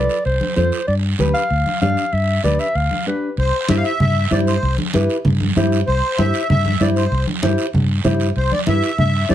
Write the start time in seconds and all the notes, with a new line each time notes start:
Already playing: F4 A4 B4 D5
0.09 short guiro
0.25 C2 C5, long guiro
0.41 high conga
0.56 F2 F4 A4 C5, high conga, short guiro
0.72 short guiro
0.87 G2 D5, long guiro
1.19 D2 D4 G4 B4, high conga, short guiro
1.34 F5, short guiro
1.50 D2, long guiro
1.66 high conga
1.81 G2 D4 G4 D5 F5, high conga, short guiro
1.97 short guiro
2.13 G2 E5, long guiro
2.43 D2 D4 G4 B4 D5, high conga, short guiro
2.59 E5, short guiro
2.75 D2 F5, long guiro
2.91 high conga
3.06 D4 G4 B4
3.37 C2 C5, high conga, long guiro
3.68 G2 E4 G4 C5 E5, high conga, short guiro
3.76 F5
3.84 E5, short guiro
4.00 G2 E5, high conga, low conga, long guiro
4.31 G2 E4 G4 C5 D5, high conga, short guiro
4.47 C5, short guiro
4.63 C2, high conga, long guiro
4.78 high conga
4.94 G2 E4 G4 B4, high conga, short guiro
5.10 short guiro
5.25 G2, high conga, low conga, long guiro
5.41 high conga
5.56 G2 E4 G4 C5, high conga, short guiro
5.72 short guiro
5.87 C2 C5, high conga, long guiro
6.18 G2 E4 G4 C5 E5, high conga, short guiro
6.34 short guiro
6.50 G2 E5, high conga, low conga, long guiro
6.65 high conga
6.80 G2 E4 G4 C5 D5, high conga, short guiro
6.96 C5, short guiro
7.11 C2, high conga, long guiro
7.27 high conga
7.42 G2 E4 G4 C5, high conga, short guiro
7.58 short guiro
7.73 G2, high conga, low conga, long guiro
8.04 G2 E4 G4 C5, high conga, low conga, short guiro
8.20 short guiro
8.36 C2 C5, high conga, long guiro
8.52 D5, high conga
8.67 G2 E4 G4 B4 E5, high conga, short guiro
8.83 short guiro
8.98 G2 E5, high conga, low conga, long guiro
9.29 G2 E4 G4 C5 D5, high conga, short guiro